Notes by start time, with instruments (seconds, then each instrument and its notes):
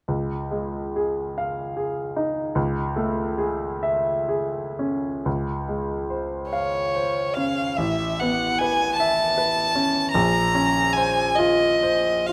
0.08 grand piano C#2
0.51 grand piano G#3
0.96 grand piano G#4
1.38 grand piano F5
1.77 grand piano G#4
2.16 grand piano D#4
2.55 grand piano C#2
2.96 grand piano A3
3.38 grand piano G#4
3.83 grand piano E5
4.29 grand piano G#4
4.79 grand piano C#4
5.25 grand piano C#2
5.68 grand piano G#3
6.10 grand piano C5
6.51 violin C#5, grand piano F5
6.95 grand piano C5
7.34 grand piano C#4, violin F5
7.76 grand piano A1, violin E5
8.19 grand piano B3, violin F#5
8.59 grand piano B4, violin G#5
8.96 grand piano E5, violin A5
9.38 grand piano B4
9.75 grand piano C#4
10.11 grand piano A#1, violin A#5
10.55 grand piano C#4
10.93 grand piano C5, violin G#5
11.35 grand piano F4, violin D#5
11.83 grand piano C5
12.27 grand piano F4, violin F5